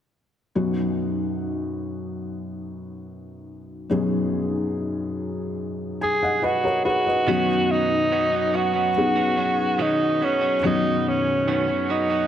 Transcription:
0.55 felt piano B1 F#2 B3 C#4 D#4 F#4
3.90 felt piano B1 F#2 B3 C#4 D#4 G#4
6.01 alto saxophone G#4, felt piano G#5
6.23 felt piano D#5 F#5
6.42 alto saxophone F#4, felt piano B4 D#5
6.64 felt piano A#4 C#5
6.85 alto saxophone F#4, felt piano G#4 B4
7.07 felt piano B4 D#5
7.27 felt piano B1 F#2 B3 C#4 D#4 F#4, clean electric guitar B2 D#3 F#3 B3 C#4 F#4
7.71 alto saxophone D#4
8.11 clean electric guitar B2 D#3 F#3 B3 C#4 F#4
8.32 clean electric guitar F#3 B3 C#4 F#4
8.52 clean electric guitar F#3 B3 C#4 F#4, alto saxophone F#4
8.73 clean electric guitar F#3 B3 C#4 F#4
8.97 felt piano B3 C#4 D#4 G#4
9.16 clean electric guitar F#3 B3 C#4 F#4
9.36 clean electric guitar F#3 B3 C#4 F#4
9.78 clean electric guitar B2 D#3 F#3 B3 C#4 F#4, alto saxophone D#4
10.20 clean electric guitar F#3 B3 C#4 F#4
10.24 alto saxophone C#4
10.41 clean electric guitar F#3 B3 C#4 F#4
10.62 felt piano B1 F#2 B3 C#4 D#4 F#4, clean electric guitar B2 D#3 F#3 B3 C#4 F#4, alto saxophone D#4
11.08 alto saxophone C#4
11.47 clean electric guitar B2 D#3 F#3 B3 C#4 F#4, alto saxophone C#4
11.67 clean electric guitar F#3 B3 C#4 F#4
11.89 clean electric guitar F#3 B3 C#4 F#4, alto saxophone D#4
12.10 clean electric guitar F#3 B3 C#4 F#4

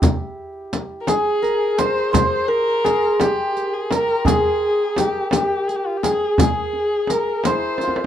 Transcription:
Already playing: santur E4 G4
0.02 riq, tombak dum, frame drum
0.73 riq, tombak tek, frame drum
1.01 kamancheh A#4
1.07 kamancheh G#4, santur G#4, riq, tombak tek, frame drum
1.42 santur A#4, riq
1.78 santur C5, kamancheh C5, riq, tombak tek, frame drum
2.13 santur C5, kamancheh C5, riq, frame drum, tombak dum
2.48 santur A#4, kamancheh A#4
2.84 santur G#4, riq, tombak tek, frame drum
3.20 santur G4, kamancheh G4, riq, tombak tek, frame drum
3.57 riq
3.73 kamancheh G#4
3.91 santur A#4, kamancheh A#4, riq, tombak tek, frame drum
4.25 santur G#4, kamancheh G#4, riq, tombak dum, frame drum
4.96 santur G4, kamancheh G4, riq, tombak tek, frame drum
5.31 santur G4, kamancheh G4, riq, tombak tek, frame drum
5.68 kamancheh G#4, riq
5.76 kamancheh G4
5.87 kamancheh F4
5.97 kamancheh G4
6.03 santur G#4, kamancheh G#4, riq, frame drum
6.38 santur G#4, kamancheh G#4, riq, tombak dum, frame drum
6.73 tombak ka
7.07 santur A#4, kamancheh A#4, riq, tombak tek, frame drum
7.44 santur E4 C5, kamancheh C5, riq, tombak tek, frame drum
7.78 riq, tombak tek
7.83 santur F4
7.88 tombak ka
7.96 tombak tek

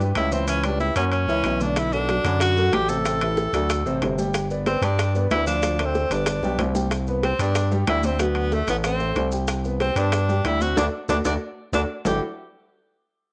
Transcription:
Already playing: fm bass G2
0.00 grand piano G3 G4 B4, high conga, maracas
0.15 fm bass C#2, tenor saxophone E4, high conga, high timbale, maracas
0.32 grand piano E3 E4 E5, tenor saxophone C4, high conga, maracas
0.48 grand piano E3 E4 E5, tenor saxophone C#4, high conga, high timbale, maracas
0.64 grand piano G3 G4 B4, tenor saxophone D4, high conga, high timbale, maracas
0.80 tenor saxophone E4, high conga, maracas
0.96 fm bass F#2, grand piano A#3 A#4 C#5, tenor saxophone C#4, high timbale, maracas
1.12 tenor saxophone C#4, high timbale, maracas
1.27 fm bass C#2, grand piano E3 E4 E5, high conga, maracas
1.44 fm bass B1, high conga, high timbale, maracas
1.60 grand piano D3 D4 D5, tenor saxophone D4, high conga, maracas
1.76 tenor saxophone E4, high bongo, high conga, high timbale, maracas
1.92 grand piano F#3 F#4 A4, tenor saxophone D4, high conga, maracas
2.09 grand piano F#3 F#4 A4, high bongo, high conga, high timbale, maracas
2.24 fm bass F#2, grand piano D3 D4 D5, high bongo, high conga, high timbale, maracas
2.40 tenor saxophone F#4, high bongo, high conga, high timbale, maracas
2.56 grand piano F#3 F#4 A4, high bongo, high conga, maracas
2.72 fm bass A1, tenor saxophone G4, high bongo, low bongo, high conga, high timbale, maracas
2.89 grand piano C3 C4 C5, tenor saxophone A4, high bongo, high conga, maracas
3.06 grand piano C3 C4 C5, high bongo, high timbale, maracas
3.21 grand piano E3 E4 G4, high conga, high timbale, maracas
3.37 high bongo, high conga, maracas
3.53 fm bass D2, grand piano F#3 F#4 A4, high bongo, high conga, high timbale, maracas
3.70 high bongo, high conga, high timbale, maracas
3.85 fm bass A1, grand piano C3 C4 C5, high bongo, high conga, maracas
4.01 fm bass G1, high bongo, low bongo, high conga, high timbale, low timbale, maracas
4.18 grand piano G3 G4 G5, high bongo, high conga, maracas
4.34 high bongo, high conga, high timbale, maracas
4.50 grand piano B3 B4 D5, high conga, maracas
4.66 grand piano B3 B4 D5, tenor saxophone C4, high bongo, high conga, high timbale, maracas
4.82 fm bass G2, grand piano G3 G4 G5, tenor saxophone D4, high bongo, high timbale, maracas
4.99 high bongo, high conga, high timbale, maracas
5.15 grand piano B3 B4 D5, high bongo, high conga, maracas
5.30 fm bass D2, tenor saxophone E4, high bongo, low bongo, high conga, high timbale, low timbale, maracas
5.47 grand piano F3 F4 F5, tenor saxophone D4, high bongo, high conga, maracas
5.63 grand piano F3 F4 F5, high bongo, high conga, high timbale, maracas
5.79 grand piano A3 A4 C5, high timbale, maracas
5.85 tenor saxophone C4
5.95 high bongo, high conga, maracas
6.10 fm bass G1, grand piano B3 B4 D5, tenor saxophone D4, high bongo, high conga, high timbale, maracas
6.26 high bongo, high conga, high timbale, maracas
6.42 fm bass B1, grand piano G3 G4 G5, high bongo, high conga, maracas
6.58 fm bass C2, low bongo, high conga, high timbale, low timbale, maracas
6.75 grand piano G3 G4 G5, low bongo, high conga, maracas
6.91 high bongo, high conga, high timbale, maracas
7.07 grand piano B3 B4, high conga, maracas
7.23 tenor saxophone C4, grand piano G4 G5, high bongo, high conga, high timbale, maracas
7.39 fm bass G2, grand piano B3 B4, tenor saxophone D4, high bongo, high conga, high timbale, maracas
7.55 high bongo, high conga, high timbale, maracas
7.71 grand piano G3 G4, high bongo, maracas
7.87 fm bass D2, tenor saxophone E4, high bongo, low bongo, high conga, high timbale, low timbale, maracas
8.03 grand piano C4 C5, tenor saxophone C4, high bongo, high conga, maracas
8.19 grand piano F#3 F#4, tenor saxophone B3, high bongo, high conga, high timbale, maracas
8.35 high conga, high timbale, maracas
8.52 grand piano A3 A4, tenor saxophone A3, high bongo, high conga, maracas
8.68 fm bass A1, tenor saxophone B3, high bongo, high timbale, maracas
8.84 grand piano C4 C5, tenor saxophone C4, high bongo, high conga, high timbale, maracas
9.00 grand piano A3 A4, high bongo, high conga, maracas
9.16 fm bass C2, high bongo, low bongo, high conga, high timbale, maracas
9.32 grand piano G4 G5, high bongo, maracas
9.48 high bongo, high conga, high timbale, maracas
9.64 grand piano B3 B4, high conga, maracas
9.80 tenor saxophone C4, grand piano G4 G5, high bongo, high conga, high timbale, maracas
9.96 fm bass G2, grand piano B3 B4, tenor saxophone D4, high bongo, high conga, high timbale, maracas
10.12 high bongo, high conga, high timbale, maracas
10.29 grand piano G3 G4, high bongo, high conga, maracas
10.44 fm bass D2, tenor saxophone E4, high bongo, low bongo, high conga, high timbale, maracas
10.61 grand piano C4 C5, tenor saxophone F#4, high bongo, high conga, maracas
10.76 fm bass D2, grand piano D4 F#4 A4, tenor saxophone D4, low bongo, high conga, high timbale, maracas
11.08 fm bass D2, grand piano D4 F#4 A4, tenor saxophone D4, low bongo, high conga, high timbale, maracas
11.25 fm bass D2, grand piano D4 F#4 A4, tenor saxophone D4, low bongo, high conga, high timbale, maracas
11.72 fm bass D2, grand piano D4 F#4 A4, tenor saxophone D4, low bongo, high conga, high timbale, maracas
12.05 fm bass G1, grand piano G3 D4 E4 F#4 G4 A4, tenor saxophone G4, low bongo, low conga, low timbale, maracas

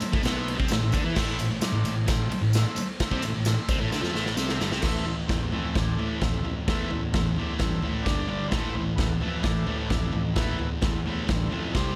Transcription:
Already playing: transistor combo organ A4 C5 E5
0.01 muted distorted electric guitar stroke, muted picked electric bass stroke, ride, tambourine
0.12 picked electric bass A1, distorted electric guitar A2 A3, kick
0.23 picked electric bass B1, distorted electric guitar B2 B3, transistor combo organ A4 E5 C6, snare, ride, tambourine
0.48 ride
0.57 picked electric bass C2, distorted electric guitar C3 C4, kick
0.68 picked electric bass A1, distorted electric guitar A2, transistor combo organ A4 C5 E5, snare, ride, tambourine
0.81 picked electric bass A1, distorted electric guitar A2
0.92 picked electric bass D2, distorted electric guitar D3 D4, kick, ride, tambourine
1.04 picked electric bass E2, distorted electric guitar E3 E4
1.14 picked electric bass A1, distorted electric guitar A2 A3, transistor combo organ A4 C5 E5, kick, snare, tambourine, crash
1.39 picked electric bass A1, distorted electric guitar A2, ride, tambourine
1.50 picked electric bass A1, distorted electric guitar A2
1.59 transistor combo organ A4 C5 D5, muted distorted electric guitar stroke, muted picked electric bass stroke, snare, ride, tambourine
1.73 picked electric bass A1, distorted electric guitar A2
1.84 picked electric bass A1, distorted electric guitar A2, ride, tambourine
2.07 picked electric bass A1, distorted electric guitar A2, transistor combo organ A4 C5 G5, kick, snare, ride, tambourine
2.29 muted distorted electric guitar stroke, muted picked electric bass stroke, ride, tambourine
2.42 picked electric bass A1, distorted electric guitar A2
2.53 transistor combo organ A4 C5 E5, snare, ride, tambourine
2.76 muted distorted electric guitar stroke, muted picked electric bass stroke, ride, tambourine
3.00 transistor combo organ A4 C5 E5, kick, snare, ride, tambourine
3.11 picked electric bass C2, distorted electric guitar C3 C4, kick
3.22 picked electric bass A1, distorted electric guitar A2, ride, tambourine
3.34 picked electric bass A1, distorted electric guitar A2
3.45 transistor combo organ A4 C5 E5, snare, ride, tambourine
3.69 picked electric bass C2, distorted electric guitar C3 C4, kick, ride, tambourine
3.80 picked electric bass A1, distorted electric guitar A2 A3
3.90 picked electric bass D2, distorted electric guitar D3 D4, transistor combo organ A4 C5 E5, snare, tambourine
4.01 picked electric bass F2, distorted electric guitar F3 F4, snare
4.13 picked electric bass A1, distorted electric guitar A2 A3, snare, tambourine
4.26 snare
4.37 picked electric bass C2, distorted electric guitar C3 C4, transistor combo organ A4 C5 E5, snare, tambourine
4.49 snare
4.59 picked electric bass G1, distorted electric guitar G2 G3, snare, tambourine
4.71 picked electric bass C2, distorted electric guitar C3 C4, snare
4.80 picked electric bass A1, distorted electric guitar A2 E3 A3, transistor combo organ A4 C5 E5, kick, snare, floor tom, crash
5.06 distorted electric guitar A2 E3, floor tom
5.27 picked electric bass E2, distorted electric guitar A2 E3, transistor combo organ A4 C5 G5, kick, snare, floor tom
5.51 picked electric bass F2, distorted electric guitar A2 E3 A3, transistor combo organ A4 C5 E5, floor tom
5.73 distorted electric guitar A2 E3, picked electric bass A2, transistor combo organ A4 C5 D5, kick, snare, floor tom
5.97 distorted electric guitar A2 E3 A3, floor tom
6.18 picked electric bass F2, distorted electric guitar A2 E3, transistor combo organ A4 C5 E5, kick, snare, floor tom
6.43 distorted electric guitar A2 E3, floor tom
6.67 picked electric bass E2, distorted electric guitar A2 E3 A3, transistor combo organ A4 C5 E5, kick, snare, floor tom
6.91 distorted electric guitar A2 E3, floor tom
7.12 picked electric bass E2, distorted electric guitar A2 E3, transistor combo organ A4 C5 E5, kick, snare, floor tom
7.36 distorted electric guitar A2 E3 A3, transistor combo organ A4 C5 D5, floor tom
7.59 picked electric bass G2, distorted electric guitar A2 E3, transistor combo organ A4 C5 E5, kick, snare, floor tom
7.82 picked electric bass A1, distorted electric guitar A2 E3 A3, floor tom
8.02 picked electric bass G1, distorted electric guitar G2 D3, transistor combo organ D4 G4 D5, kick, floor tom
8.07 distorted electric guitar G3, snare
8.27 picked electric bass G1, distorted electric guitar G2 D3 G3, transistor combo organ D4 G4 D5, floor tom
8.48 picked electric bass A1, distorted electric guitar A2, transistor combo organ E4 A4 C5, floor tom
8.52 distorted electric guitar E3 A3, kick, snare
8.75 distorted electric guitar A2 E3, floor tom
8.95 picked electric bass E2, distorted electric guitar A2 E3, transistor combo organ E4 A4 B4, kick, snare, floor tom
9.20 picked electric bass F2, distorted electric guitar A2 E3 A3, transistor combo organ E4 A4 B4, floor tom
9.41 picked electric bass A2, distorted electric guitar A2, transistor combo organ E4 A4 D5, kick, snare, floor tom
9.45 distorted electric guitar E3
9.66 distorted electric guitar A2 E3 A3, floor tom
9.86 transistor combo organ E4 A4 D5
9.90 picked electric bass F2, distorted electric guitar A2 E3, kick, snare, floor tom
10.12 distorted electric guitar A2 E3, floor tom
10.34 picked electric bass E2, distorted electric guitar A2 E3 A3, transistor combo organ E4 A4 B4, kick, snare, floor tom
10.58 distorted electric guitar A2 E3, floor tom
10.82 picked electric bass E2, distorted electric guitar A2 E3, transistor combo organ E4 A4 C5, kick, snare, floor tom
11.06 distorted electric guitar A2 E3 A3, transistor combo organ E4 A4 C5, floor tom
11.27 picked electric bass G2, distorted electric guitar A2 E3, transistor combo organ E4 A4, kick, snare, floor tom
11.32 transistor combo organ C5
11.50 picked electric bass F2, distorted electric guitar A2 E3 A3, floor tom
11.74 picked electric bass C2, distorted electric guitar C3 G3 C4, transistor combo organ C4 G4 C5 C6, kick, snare, floor tom

